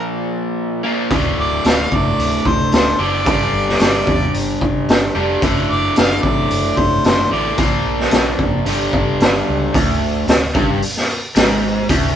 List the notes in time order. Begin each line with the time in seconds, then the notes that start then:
Already playing: A#2 F3 A#3
0.84 A#2 F3 A#3
1.10 D1 D2 A2 D3, kick, open hi-hat
1.37 D1 D5
1.64 D1 F5, snare, open hi-hat
1.92 F#1 D5, kick
2.18 D1, open hi-hat
2.45 D1 C5, kick
2.72 D1 C5, snare, open hi-hat
2.99 F#1 D2 A2 D3 D5
3.26 G1 G2 D3 G3, kick, open hi-hat
3.53 G1
3.68 snare
3.80 G1 D5, snare, open hi-hat
4.07 E2, kick
4.34 G1, open hi-hat
4.61 G1, kick
4.88 G1, snare, open hi-hat
5.15 F1 G2 D3 G3
5.42 F#1 D2 A2 D3, kick, open hi-hat
5.70 F#1 D5
5.96 F#1 F5, snare, open hi-hat
6.23 A1 D5, kick
6.51 F#1, open hi-hat
6.77 F#1 C5, kick
7.04 F#1 C5, snare, open hi-hat
7.31 A1 D2 A2 D3 D5
7.58 A#1 A#2 F3 A#3, kick, open hi-hat
7.85 A#1
8.00 snare
8.11 A#1, snare, open hi-hat
8.39 F#1, kick
8.66 G1 G2 D3 G3, open hi-hat
8.93 G1, kick
9.20 G1, snare, open hi-hat
9.49 C#2
9.74 D1 D2, kick, open hi-hat
10.28 D1 D2, snare, open hi-hat
10.55 G1 G2, kick
10.82 open hi-hat
10.97 snare
11.35 G#1 G#2, snare, open hi-hat
11.89 D1 D2, kick, open hi-hat